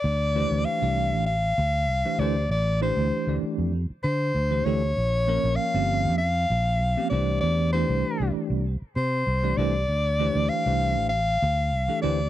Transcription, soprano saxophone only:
\new Staff \with { instrumentName = "Soprano saxophone" } { \time 4/4 \key d \minor \tempo 4 = 98 d''4 f''4 f''4. d''8 | d''8 c''4 r4 c''4 des''8~ | des''4 f''4 f''4. d''8 | d''8 c''4 r4 c''4 d''8~ |
d''4 f''4 f''4. d''8 | }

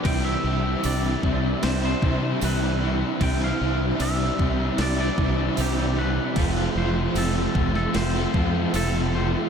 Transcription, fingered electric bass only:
\new Staff \with { instrumentName = "Fingered electric bass" } { \clef bass \time 4/4 \key c \major \tempo 4 = 76 c,8 c,8 c,8 c,8 c,8 c8 c,4 | c,8 c,8 c,8 c,8 c,8 c,8 c,4 | f,,8 f,,8 f,,8 f,,8 f,,8 f,8 f,,4 | }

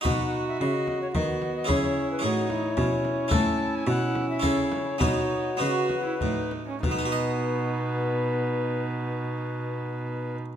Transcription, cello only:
\new Staff \with { instrumentName = "Cello" } { \clef bass \time 3/4 \key b \mixolydian \tempo 4 = 102 b,4 cis4 dis4 | cis4 a,4 b,4 | a,4 b,4 cis4 | b,4 cis4 a,4 |
b,2.~ | b,2. | }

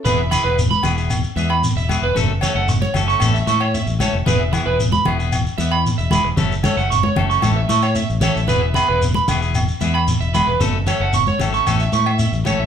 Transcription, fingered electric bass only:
\new Staff \with { instrumentName = "Fingered electric bass" } { \clef bass \time 4/4 \key e \major \tempo 4 = 114 e,,8. e,,8. e,,4 e,8. e,,8 e,,16 | fis,,8. fis,,8. fis,,8 a,,8 a,8. a,,8 f,,16 | e,,8. e,,8. e,,4 e,8. e,,8 e,,16 | fis,,8. fis,,8. fis,,8 a,,8 a,8. a,,8 a,,16 |
e,,8. e,,8. e,,4 e,8. e,,8 e,,16 | fis,,8. fis,,8. gis,,8 a,,8 a,8. a,,8 a,,16 | }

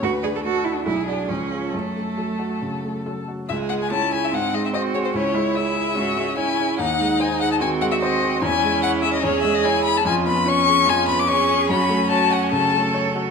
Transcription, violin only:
\new Staff \with { instrumentName = "Violin" } { \time 4/4 \key fis \minor \tempo 4 = 146 b'4 a'4 gis'4 gis'4 | a'2.~ a'8 r8 | \key cis \minor e''8 fis''16 gis''16 a''8 gis''16 e''16 fis''8 dis''16 e''16 dis''8 cis''16 bis'16 | cis''4 e''2 gis''4 |
fis''4 gis''8 fis''16 a''16 gis''8 fis''16 e''16 dis''4 | gis''4 fis''8 e''16 dis''16 cis''8 e''16 dis''16 gis''8 b''16 a''16 | \key fis \minor gis''8 b''8 cis'''4 gis''8 b''16 d'''16 cis'''4 | b''4 a''8 fis''16 gis''16 a''4 r4 | }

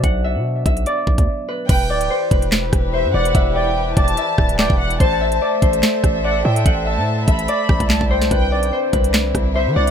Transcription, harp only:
\new Staff \with { instrumentName = "Harp" } { \time 4/4 \key e \minor \tempo 4 = 145 fis''8 e''4 e''8 d''4. b'8 | b'8 d''8 c''8 b'4. c''8 d''8 | e''8 d''4 d''8 e''4 d''4 | c''8 e''8 d''8 c''4. d''8 e''8 |
fis''8 e''4 e''8 d''4. c''8 | b'8 d''8 c''8 b'4. c''8 d''8 | }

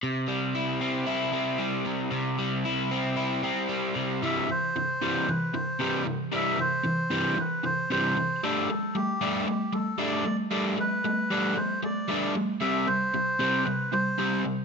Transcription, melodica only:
\new Staff \with { instrumentName = "Melodica" } { \time 4/4 \key c \major \tempo 4 = 114 r1 | r1 | e''8 c''4. b'8 c''4 r8 | e''8 c''4. b'8 c''8 c''4 |
a'4 g'4 g'8 a'8 d''8. r16 | d''8 b'4. c''8 d''4 r8 | e''8 c''4. b'8 c''4 r8 | }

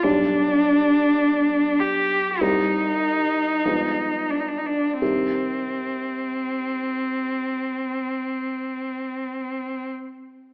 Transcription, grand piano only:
\new Staff \with { instrumentName = "Grand piano" } { \clef bass \time 4/4 \key c \minor \tempo 4 = 44 <b,, g d'>2 <c, g c'>4 <g, f aes b>4 | <c ees g c'>1 | }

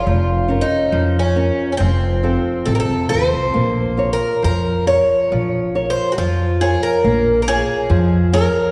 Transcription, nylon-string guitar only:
\new Staff \with { instrumentName = "Nylon-string guitar" } { \time 2/4 \key bes \minor \tempo 4 = 69 f8 <des' f' bes'>8 f8 <des' f' bes'>8 | f8 <c' f' a'>8 c8 <c' f' a'>8 | bes8 <f' bes' des''>8 f8 <f' bes' des''>8 | f8 <f' bes' des''>8 f8 <f' bes' des''>8 |
bes8 <f' bes' des''>8 f8 <f' bes' des''>8 | }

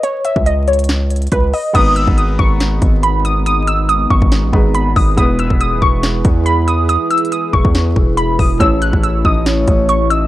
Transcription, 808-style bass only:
\new Staff \with { instrumentName = "808-style bass" } { \clef bass \time 4/4 \key gis \phrygian \tempo 4 = 140 r8. cis,2~ cis,16 cis,8 r8 | gis,,8. gis,,8. gis,,4 gis,,4.~ | gis,,4. gis,,16 gis,,8 a,,16 gis,,4 gis,,8 | e,,8. e,,8 dis,,16 e,,4 e,4.~ |
e,16 r4 r16 e,,16 e,8. e,,4 e,,8 | a,,8. a,,8. a,,4 a,,4. | }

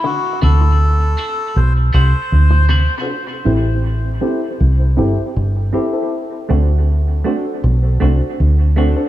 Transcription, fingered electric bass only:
\new Staff \with { instrumentName = "Fingered electric bass" } { \clef bass \time 4/4 \key a \dorian \tempo 4 = 79 r8 d,4 r8 b,,8 c,16 r16 d,8. r16 | r8 a,,4 r8 c,8 g,,16 r16 g,,8 r8 | r8 d,4 r8 b,,8 c,16 r16 d,8. r16 | }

